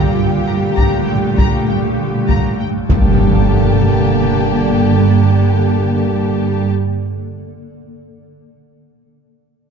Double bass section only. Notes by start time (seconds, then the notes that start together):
0.18 G2
0.48 G2
0.79 G2
1.09 G2
1.39 G2
1.70 G2
2.30 G2
2.60 G2
2.90 G2